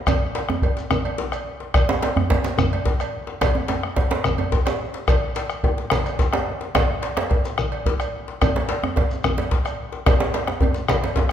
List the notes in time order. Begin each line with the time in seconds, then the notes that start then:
0.07 bombo rim, bombo low, cowbell, djembe tone, djembe bass, shekere
0.35 cowbell, djembe slap
0.49 bombo rim, djembe tone
0.62 bombo low, cowbell, djembe tone
0.77 djembe slap, shekere
0.90 bombo rim, djembe tone, djembe bass, shekere
1.05 cowbell
1.18 djembe slap, djembe tone
1.32 bombo rim, cowbell, shekere
1.60 djembe slap
1.74 bombo rim, bombo low, cowbell, djembe tone, djembe bass, shekere
1.89 djembe slap
2.02 cowbell, djembe slap
2.17 bombo rim, djembe bass
2.30 bombo low, cowbell, djembe slap, djembe tone
2.44 djembe slap, shekere
2.58 bombo rim, djembe bass, shekere
2.73 cowbell
2.86 bombo low, djembe slap, djembe tone
3.00 bombo rim, cowbell, shekere
3.27 djembe slap
3.41 bombo rim, bombo low, cowbell, djembe slap, djembe tone, djembe bass, shekere
3.55 djembe slap, djembe tone
3.68 cowbell, djembe slap, djembe tone
3.83 bombo rim
3.96 bombo low, cowbell, djembe slap, djembe tone
4.11 djembe slap
4.24 bombo rim, djembe tone, djembe bass, shekere
4.38 cowbell, djembe tone
4.52 bombo low, djembe slap, djembe tone
4.66 bombo rim, cowbell, djembe slap, shekere
4.94 djembe slap
5.08 bombo rim, bombo low, cowbell, djembe slap, djembe tone, djembe bass, shekere
5.22 bombo rim
5.35 cowbell, djembe slap, shekere
5.50 bombo rim, shekere
5.63 bombo low, cowbell, djembe slap, djembe tone
5.78 djembe slap
5.90 bombo rim, djembe slap, djembe bass, shekere
6.06 cowbell, djembe slap, shekere
6.19 bombo low, djembe slap, djembe tone, shekere
6.33 bombo rim, cowbell, djembe slap
6.47 bombo rim, djembe slap
6.61 djembe slap
6.75 bombo rim, bombo low, cowbell, djembe slap, djembe tone, djembe bass, shekere
6.89 djembe slap
7.02 cowbell, djembe slap
7.17 bombo rim, djembe slap
7.30 bombo low, cowbell, djembe tone
7.45 djembe slap, shekere
7.58 bombo rim, djembe bass, shekere
7.72 cowbell
7.86 bombo low, djembe slap, djembe tone
8.00 bombo rim, cowbell, shekere
8.28 djembe slap
8.41 bombo rim, bombo low, cowbell, djembe tone, djembe bass, shekere
8.56 djembe slap
8.69 cowbell, djembe slap
8.83 bombo rim, djembe tone
8.96 bombo low, cowbell, djembe slap, djembe tone
9.11 shekere
9.24 bombo rim, djembe tone, djembe bass, shekere
9.38 cowbell, djembe slap
9.51 bombo low, djembe slap
9.65 bombo rim, cowbell, shekere
9.92 djembe slap
10.06 bombo rim, bombo low, cowbell, djembe slap, djembe tone, djembe bass, shekere
10.20 djembe slap
10.34 cowbell, djembe slap
10.47 bombo rim, djembe slap
10.60 bombo low, cowbell, djembe tone
10.74 djembe slap, shekere
10.88 bombo rim, djembe slap, djembe bass, shekere
11.03 cowbell, djembe slap
11.16 bombo low, djembe slap, djembe tone
11.29 bombo rim